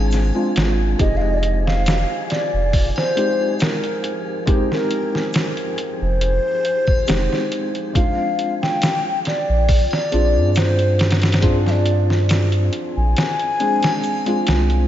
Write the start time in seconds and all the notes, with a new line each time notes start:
Already playing: G#1 F3 G#3 C4 D4 G#4
0.12 snare, closed hi-hat, shaker
0.34 G#3 C4 D4 F4
0.56 G#1, snare, closed hi-hat
0.98 F1 G#3 C4 D#4 G4 D#5, kick, closed hi-hat
1.17 F5
1.21 D#5
1.34 D5
1.38 D#5
1.43 closed hi-hat
1.66 F5, snare
1.86 snare, closed hi-hat, shaker
2.30 D5, snare, closed hi-hat
2.53 F1
2.73 kick, open hi-hat
2.96 C5, snare, triangle
3.15 G#3 C4 D#4 G4, closed hi-hat
3.60 A#4, snare, closed hi-hat, shaker
3.84 closed hi-hat
4.04 closed hi-hat
4.46 G#3 C4 D#4 G4, kick, closed hi-hat
4.71 A#4, snare
4.91 closed hi-hat
5.15 snare
5.33 snare, closed hi-hat, shaker
5.57 closed hi-hat
5.78 closed hi-hat
6.01 F1 C5
6.21 closed hi-hat
6.65 closed hi-hat
6.87 kick, triangle
7.07 F1 G#3 C4 D#4 G4, snare, closed hi-hat, shaker
7.33 snare
7.52 closed hi-hat
7.75 closed hi-hat
7.93 G#3 C4 D4 F4 F5, kick, closed hi-hat
8.39 closed hi-hat
8.62 G5, snare
8.82 snare, closed hi-hat, shaker
9.25 D5, snare, closed hi-hat
9.49 A#1
9.69 kick, open hi-hat
9.91 D5, snare, triangle
10.11 A#1 C4 D4 F4 G#4, closed hi-hat
10.36 G2
10.55 C5, snare, closed hi-hat, shaker
10.79 closed hi-hat
10.99 snare, closed hi-hat
11.11 snare, closed hi-hat
11.22 snare, closed hi-hat
11.32 snare, closed hi-hat
11.41 C4 D4 F4 G#4, kick, closed hi-hat
11.66 F5, snare
11.71 D5
11.86 closed hi-hat
12.10 snare
12.29 snare, closed hi-hat, shaker
12.52 closed hi-hat
12.73 closed hi-hat
12.96 A#1 G#5
13.16 snare, closed hi-hat
13.40 closed hi-hat
13.59 G#3 C4 D4 G#4, closed hi-hat
13.83 snare, closed hi-hat, triangle
14.04 closed hi-hat, shaker
14.26 G#3 C4 D4 F4, closed hi-hat
14.47 C2, snare, closed hi-hat
14.70 closed hi-hat